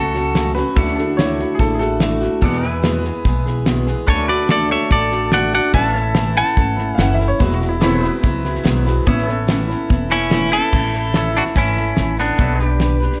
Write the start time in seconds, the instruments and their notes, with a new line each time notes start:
Already playing: upright bass C#2, steel-string acoustic guitar F#3 A3 C#4 F#4, clean electric guitar F#4 A4, pedal steel guitar A4 C#5 F#5
0.14 steel-string acoustic guitar F#3 A3 C#4 F#4, snare
0.35 steel-string acoustic guitar F#2 C#3 F#3 A3 C#4 F#4, snare, hi-hat pedal
0.55 steel-string acoustic guitar F#3 A3 C#4 F#4, upright piano B4, snare
0.76 upright bass D2, steel-string acoustic guitar D3 A3 E4 F#4, pedal steel guitar C#4 A4 F#5, kick, snare
0.87 snare
0.96 pedal steel guitar D4, steel-string acoustic guitar E4 F#4, upright piano A4, snare
1.01 steel-string acoustic guitar A3
1.17 steel-string acoustic guitar D3 A3 E4 F#4, upright piano C#5, snare, hi-hat pedal
1.39 steel-string acoustic guitar A3 E4 F#4, snare
1.55 upright piano G#4
1.59 upright bass A1, steel-string acoustic guitar D3 A3 E4 F#4, upright piano A4, kick, snare
1.74 upright piano G#4
1.79 steel-string acoustic guitar E4 F#4, upright piano A4, snare
1.84 steel-string acoustic guitar A3
2.00 steel-string acoustic guitar D3 A3 E4 F#4, snare, hi-hat pedal
2.20 steel-string acoustic guitar A3 E4 F#4, snare
2.42 steel-string acoustic guitar E2 B2 E3 G#3 B3 G#4, upright bass E2, pedal steel guitar A4 D5 F#5, kick, snare
2.52 snare
2.62 steel-string acoustic guitar E3 G#3 B3 G#4, snare
2.67 pedal steel guitar B4 E5 G#5
2.82 steel-string acoustic guitar E2 B2 E3 G#3 B3 G#4, snare, hi-hat pedal
3.04 steel-string acoustic guitar E3 G#3 B3 G#4, snare
3.25 upright bass B1, steel-string acoustic guitar E3 G#3 B3 G#4, kick, snare
3.46 steel-string acoustic guitar E3 G#3 B3 G#4, snare
3.65 steel-string acoustic guitar E2 B2 E3 G#3 B3 G#4, snare, hi-hat pedal
3.87 steel-string acoustic guitar E3 G#3 B3 G#4, snare
4.07 upright bass D2, steel-string acoustic guitar D3 A3 D4 F#4, clean electric guitar A4 C#5, pedal steel guitar B4 D5 G#5, kick, snare
4.19 snare
4.28 steel-string acoustic guitar A3 D4 F#4, pedal steel guitar A4, clean electric guitar B4 D5, snare
4.34 pedal steel guitar F#5
4.48 steel-string acoustic guitar D3 A3 D4 F#4, clean electric guitar A4 D5, snare, hi-hat pedal
4.69 steel-string acoustic guitar A3 D4 F#4, clean electric guitar C#5 E5, snare
4.90 upright bass A1, steel-string acoustic guitar D3 A3 D4 F#4, clean electric guitar A4 D5, kick, snare
5.11 steel-string acoustic guitar A3 D4 F#4, snare
5.32 steel-string acoustic guitar D3 A3 D4 F#4, clean electric guitar D5 F#5, snare, hi-hat pedal
5.53 steel-string acoustic guitar A3 D4 F#4, clean electric guitar D5 F#5, snare
5.73 upright bass A1, steel-string acoustic guitar A2 E3 A3 C#4 E4, pedal steel guitar A4 D5 F#5, clean electric guitar E5 A5, kick, snare
5.84 snare
5.93 steel-string acoustic guitar A3 C#4 E4, pedal steel guitar C#5, snare
6.01 pedal steel guitar E5
6.14 steel-string acoustic guitar A2 E3 A3 C#4 E4, snare, hi-hat pedal
6.36 steel-string acoustic guitar C#4 E4, clean electric guitar F#5 A5, snare
6.40 steel-string acoustic guitar A3
6.56 upright bass G#1, steel-string acoustic guitar E3 A3 C#4 E4, kick, snare
6.76 steel-string acoustic guitar A3 C#4 E4, snare
6.92 upright piano F5, clean electric guitar G#5
6.97 upright bass F#1, steel-string acoustic guitar A2 E3 A3 C#4 E4, upright piano F#5, snare, hi-hat pedal
7.14 steel-string acoustic guitar E4, upright piano E5
7.20 steel-string acoustic guitar A3 C#4, snare
7.28 upright piano C#5
7.39 upright bass E1, steel-string acoustic guitar E2 B2 F#3 G#3 B3 E4, upright piano B4, kick, snare
7.51 upright piano F#4, snare
7.59 steel-string acoustic guitar F#3 G#3 B3 E4, snare
7.69 upright piano E4
7.80 steel-string acoustic guitar E2 B2 F#3 G#3 B3 E4, upright piano C4 E4, pedal steel guitar A4 C#5 E5, snare, hi-hat pedal
8.01 steel-string acoustic guitar F#3 G#3 B3 E4, pedal steel guitar G#4, snare
8.08 pedal steel guitar B4
8.22 upright bass C#2, steel-string acoustic guitar F#3 G#3 B3 E4, kick, snare
8.44 steel-string acoustic guitar F#3 G#3 B3 E4, snare
8.55 snare
8.63 upright bass B1, steel-string acoustic guitar E2 B2 F#3 G#3 B3 E4, snare, hi-hat pedal
8.85 steel-string acoustic guitar F#3 G#3 B3 E4, snare
9.06 upright bass A1, steel-string acoustic guitar A2 E3 B3 C#4 E4, pedal steel guitar G#4 C#5 E5, kick, snare
9.18 snare
9.27 steel-string acoustic guitar B3 C#4 E4, pedal steel guitar A4, snare
9.47 steel-string acoustic guitar A2 E3 B3 C#4 E4, snare, hi-hat pedal
9.68 steel-string acoustic guitar B3 C#4 E4, snare
9.88 upright bass E1, steel-string acoustic guitar E3 B3 C#4 E4, kick, snare
10.09 steel-string acoustic guitar B3 C#4 E4, clean electric guitar C#4 E4, snare
10.30 steel-string acoustic guitar A2 E3 B3 C#4 E4, snare, hi-hat pedal
10.51 steel-string acoustic guitar C#4 E4, clean electric guitar E4 A4, snare
10.55 steel-string acoustic guitar B3
10.72 upright bass A1, steel-string acoustic guitar A2 E3 A3 C#4 E4, kick, snare, crash
10.92 steel-string acoustic guitar C#4 E4, snare
10.96 steel-string acoustic guitar A3
11.12 steel-string acoustic guitar E3 A3 C#4 E4, pedal steel guitar A4, snare, hi-hat pedal
11.17 pedal steel guitar C#5 E5
11.33 steel-string acoustic guitar A3 C#4 E4, clean electric guitar D4, snare
11.38 clean electric guitar F#4
11.45 snare
11.55 upright bass G#1, steel-string acoustic guitar A2 E3 A3 C#4 E4, clean electric guitar C#4 E4, kick, snare
11.76 steel-string acoustic guitar A3 C#4 E4, snare
11.97 upright bass A1, steel-string acoustic guitar E3 A3 C#4 E4, snare, hi-hat pedal
12.17 steel-string acoustic guitar A3 C#4 E4, clean electric guitar B3 D4, snare
12.38 upright bass B1, steel-string acoustic guitar B3 D4 G4 B4, pedal steel guitar A4 C#5 E5, kick, snare
12.59 steel-string acoustic guitar D4 G4 B4, snare
12.64 pedal steel guitar G4 B4 D5
12.79 steel-string acoustic guitar B3 D4 G4 B4, snare, hi-hat pedal
13.00 steel-string acoustic guitar D4 G4 B4, snare
13.12 snare